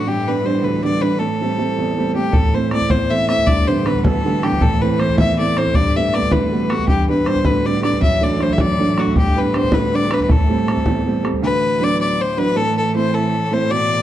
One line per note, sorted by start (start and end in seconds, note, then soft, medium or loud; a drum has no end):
0.00 2.32 A2 medium
0.00 2.32 E3 medium
0.07 0.44 G2 soft
0.07 0.29 G4 medium
0.27 0.43 G3 soft
0.27 0.44 B3 soft
0.27 0.44 D4 soft
0.27 0.47 B4 medium
0.45 0.76 G3 soft
0.45 0.76 B3 soft
0.45 0.76 D4 medium
0.45 0.66 C5 medium
0.63 1.01 D2 soft
0.63 0.83 B4 medium
0.83 0.99 G3 soft
0.83 1.00 B3 soft
0.83 1.01 D4 soft
0.83 1.03 D5 medium
1.01 1.16 G3 soft
1.01 1.16 B3 soft
1.01 1.17 D4 soft
1.01 1.21 B4 medium
1.19 1.58 A2 medium
1.19 2.14 A4 medium
1.41 1.57 G3 soft
1.41 1.57 A3 soft
1.41 1.57 C4 soft
1.58 1.89 G3 soft
1.58 1.90 A3 soft
1.58 1.90 C4 soft
1.78 2.15 E2 medium
1.97 2.13 G3 soft
1.97 2.14 A3 soft
1.97 2.14 C4 soft
2.15 2.30 G3 soft
2.15 2.30 A3 soft
2.15 2.30 C4 soft
2.15 2.34 G4 medium
2.33 2.71 A2 medium
2.33 6.87 A2 medium
2.33 6.87 E3 medium
2.33 2.56 A4 medium
2.33 bodhran medium
2.44 bodhran soft
2.54 2.71 E3 soft
2.54 2.71 A3 soft
2.54 2.72 C4 soft
2.54 2.72 C5 medium
2.54 bodhran soft
2.71 3.03 E3 soft
2.71 3.04 A3 soft
2.71 3.04 C4 soft
2.71 2.91 D5 loud
2.71 bodhran medium
2.81 bodhran soft
2.90 3.28 E2 soft
2.90 3.12 C5 medium
2.90 bodhran medium
3.10 3.27 E3 soft
3.10 3.27 A3 soft
3.10 3.28 C4 soft
3.10 3.28 E5 loud
3.28 3.43 E3 soft
3.28 3.43 A3 soft
3.28 3.44 C4 soft
3.28 3.48 E5 loud
3.28 bodhran soft
3.38 bodhran soft
3.46 3.85 G2 medium
3.46 3.69 D5 loud
3.46 bodhran medium
3.57 bodhran soft
3.67 3.84 D3 soft
3.67 3.84 G3 soft
3.67 3.85 B3 soft
3.67 3.88 C5 medium
3.85 4.16 D3 soft
3.85 4.17 G3 soft
3.85 4.17 B3 soft
3.85 3.98 B4 medium
3.85 bodhran soft
3.95 4.05 B4 medium
3.95 bodhran soft
4.04 4.42 D2 soft
4.04 4.45 A4 medium
4.04 bodhran medium
4.24 4.41 D3 soft
4.24 4.41 G3 soft
4.24 4.42 B3 soft
4.43 4.57 D3 soft
4.43 4.57 G3 soft
4.43 4.58 B3 medium
4.43 4.63 G4 medium
4.43 bodhran medium
4.52 bodhran soft
4.61 4.99 A2 medium
4.61 4.83 A4 loud
4.61 bodhran medium
4.71 bodhran soft
4.82 4.98 E3 soft
4.82 4.99 A3 soft
4.82 4.99 C4 soft
4.82 5.02 B4 medium
4.82 bodhran soft
5.00 5.31 E3 soft
5.00 5.31 A3 soft
5.00 5.31 C4 soft
5.00 5.18 C5 loud
5.00 bodhran soft
5.09 bodhran soft
5.18 5.56 E2 medium
5.18 5.37 E5 medium
5.18 bodhran medium
5.39 5.56 E3 soft
5.39 5.56 A3 soft
5.39 5.57 C4 soft
5.39 5.59 D5 medium
5.57 5.72 E3 soft
5.57 5.72 A3 soft
5.57 5.72 C4 soft
5.57 5.76 C5 medium
5.57 bodhran medium
5.66 bodhran soft
5.74 6.13 G2 medium
5.74 5.98 D5 loud
5.74 bodhran medium
5.95 6.13 G3 soft
5.95 6.14 A3 soft
5.95 6.14 B3 soft
5.95 6.16 E5 medium
5.95 bodhran soft
6.14 6.45 G3 soft
6.14 6.45 A3 soft
6.14 6.45 B3 soft
6.14 6.33 D5 medium
6.14 bodhran soft
6.22 bodhran soft
6.32 6.69 D2 soft
6.32 6.71 B4 medium
6.32 bodhran medium
6.52 6.69 G3 soft
6.52 6.69 A3 soft
6.52 6.69 B3 soft
6.70 6.85 G3 soft
6.70 6.85 A3 soft
6.70 6.85 B3 soft
6.70 6.88 F#4 medium
6.70 bodhran medium
6.79 bodhran soft
6.88 7.26 G2 medium
6.88 11.41 A2 medium
6.88 11.41 E3 medium
6.88 7.07 G4 medium
6.88 bodhran medium
6.98 bodhran soft
7.09 7.26 G3 soft
7.09 7.26 B3 soft
7.09 7.26 D4 soft
7.09 7.29 B4 medium
7.26 7.58 G3 soft
7.26 7.58 B3 soft
7.26 7.58 D4 soft
7.26 7.47 C5 medium
7.26 bodhran medium
7.35 bodhran soft
7.45 7.82 D2 medium
7.45 7.67 B4 medium
7.45 bodhran medium
7.65 7.82 G3 soft
7.65 7.82 B3 soft
7.65 7.82 D4 soft
7.65 7.83 D5 medium
7.83 7.98 G3 soft
7.83 7.98 B3 soft
7.83 7.98 D4 soft
7.83 8.00 D5 medium
7.83 bodhran medium
7.93 bodhran soft
8.01 8.39 F#2 medium
8.01 8.25 E5 medium
8.01 bodhran medium
8.21 8.37 F#3 soft
8.21 8.38 A3 soft
8.21 8.38 D4 soft
8.21 8.44 D5 medium
8.21 bodhran soft
8.39 8.70 F#3 soft
8.39 8.71 A3 soft
8.39 8.71 D4 soft
8.39 8.54 C5 medium
8.39 bodhran soft
8.50 8.61 E5 medium
8.50 bodhran soft
8.58 8.96 F#2 medium
8.58 9.01 D5 medium
8.58 bodhran medium
8.79 8.96 F#3 soft
8.79 8.96 A3 soft
8.79 8.97 D4 medium
8.98 9.12 F#3 soft
8.98 9.12 A3 soft
8.98 9.12 D4 soft
8.98 9.16 F#4 medium
8.98 bodhran medium
9.07 bodhran soft
9.16 9.53 G2 medium
9.16 9.39 G4 loud
9.16 bodhran medium
9.36 9.53 G3 soft
9.36 9.54 B3 soft
9.36 9.54 D4 soft
9.36 9.57 B4 medium
9.36 bodhran soft
9.54 9.85 G3 soft
9.54 9.86 B3 soft
9.54 9.86 D4 soft
9.54 9.75 C5 medium
9.54 bodhran medium
9.63 bodhran soft
9.72 10.10 D2 medium
9.72 9.97 B4 medium
9.72 bodhran medium
9.92 10.09 G3 soft
9.92 10.09 B3 soft
9.92 10.09 D4 soft
9.92 10.15 D5 medium
10.10 10.25 G3 soft
10.10 10.25 B3 soft
10.10 10.25 D4 soft
10.10 10.23 B4 medium
10.10 bodhran medium
10.20 10.33 B4 medium
10.20 bodhran soft
10.28 10.66 A2 medium
10.28 11.26 A4 medium
10.28 bodhran medium
10.40 bodhran soft
10.49 10.67 G3 soft
10.49 10.67 A3 soft
10.49 10.67 C4 soft
10.49 bodhran soft
10.68 10.99 G3 soft
10.68 10.99 A3 soft
10.68 10.99 C4 soft
10.68 bodhran medium
10.77 bodhran soft
10.85 11.23 E2 medium
10.85 bodhran medium
11.06 11.22 G3 soft
11.06 11.22 A3 soft
11.06 11.22 C4 soft
11.23 11.38 G3 soft
11.23 11.39 A3 soft
11.23 11.39 C4 soft
11.23 bodhran medium
11.34 bodhran soft
11.42 12.53 D2 medium
11.42 14.02 A2 medium
11.42 14.02 E3 medium
11.42 11.85 B4 loud
11.80 12.18 F#3 soft
11.80 12.19 B3 soft
11.80 12.19 D4 medium
11.80 12.00 D5 loud
12.01 12.23 D5 medium
12.21 12.40 C5 medium
12.37 12.55 F#3 soft
12.37 12.55 B3 soft
12.37 12.55 D4 soft
12.37 12.58 B4 loud
12.56 13.66 A2 medium
12.56 12.77 A4 loud
12.77 12.94 A4 medium
12.95 13.32 A3 soft
12.95 13.32 C4 soft
12.95 13.32 E4 medium
12.95 13.15 C5 medium
13.14 13.55 A4 medium
13.51 13.69 A3 soft
13.51 13.69 C4 soft
13.51 13.70 E4 medium
13.51 13.72 C5 medium
13.70 14.02 B2 medium
13.70 14.02 D5 loud